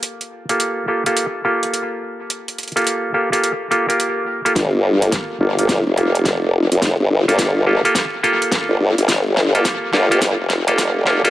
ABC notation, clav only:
X:1
M:4/4
L:1/16
Q:"Swing 16ths" 1/4=106
K:Gm
V:1 name="Clav"
[B,FGA]3 [B,FGA]3 [B,FGA] [B,FGA]2 z [B,FGA]6- | [B,FGA]3 [B,FGA]3 [B,FGA] [B,FGA]2 z [B,FGA] [B,FGB]4 [B,FGA]- | [B,FGA] z2 [B,FGA]3 [B,FGA] [B,FGA]2 z [B,FGA]6- | [B,FGA]3 [B,FGA]3 [B,FGA] [B,FGA]2 z [B,FGA]6 |
z3 [B,FGA]3 [B,FGA] [B,FGA] z3 [B,FGA]3 [B,FGA] [B,FGA] |]